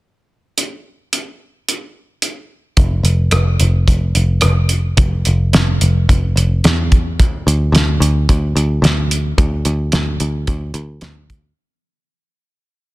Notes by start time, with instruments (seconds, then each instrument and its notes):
0.58 closed hi-hat
1.13 closed hi-hat
1.69 closed hi-hat
2.22 closed hi-hat
2.77 picked electric bass F1, kick, closed hi-hat
3.03 picked electric bass F1, closed hi-hat
3.31 picked electric bass F1, cross-stick, closed hi-hat
3.60 picked electric bass F1, closed hi-hat
3.88 picked electric bass F1, kick, closed hi-hat
4.15 picked electric bass F1, closed hi-hat
4.41 picked electric bass F1, cross-stick, closed hi-hat
4.69 closed hi-hat
4.97 picked electric bass F1, kick, closed hi-hat
5.25 picked electric bass F1, closed hi-hat
5.53 picked electric bass F1, snare, closed hi-hat
5.81 picked electric bass F1, closed hi-hat
6.09 picked electric bass F1, kick, closed hi-hat
6.36 picked electric bass F1, closed hi-hat
6.64 picked electric bass E2, snare, closed hi-hat
6.92 kick, closed hi-hat
7.19 picked electric bass D2, kick, closed hi-hat
7.47 picked electric bass D2, closed hi-hat
7.72 picked electric bass D2, snare, closed hi-hat
8.00 picked electric bass D2, closed hi-hat
8.29 picked electric bass D2, kick, closed hi-hat
8.56 picked electric bass D2, closed hi-hat
8.82 picked electric bass D2, snare, closed hi-hat
9.11 closed hi-hat
9.38 picked electric bass D2, kick, closed hi-hat
9.65 picked electric bass D2, closed hi-hat
9.92 picked electric bass D2, snare, closed hi-hat
10.20 picked electric bass D2, closed hi-hat
10.47 picked electric bass D2, kick, closed hi-hat
10.74 picked electric bass D2, closed hi-hat
11.01 picked electric bass D2, snare, closed hi-hat
11.30 kick, closed hi-hat